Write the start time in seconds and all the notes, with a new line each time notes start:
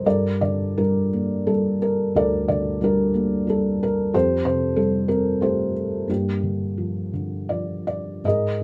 0.06 G2 A4 A#4 D5
0.41 D3 D5
0.78 G3 D4 A#4
1.13 A#3
1.47 G3 A4
1.82 A#4
2.15 D2 A4 A#4 D5
2.48 D3 D5
2.81 G3 D4 A#4
3.14 A#3
3.47 G3 A4
3.83 A#4
4.13 F2 G4 A4 C5
4.45 C3 C5
4.76 G3 A4
5.08 C4 A#4
5.41 A3 G4 A4 C5
6.08 G2 A#3 D4 G4
6.43 D3
6.78 F3
7.13 D3
7.49 F3 D5
7.87 D5
8.24 G#2 G#4 A#4 D#5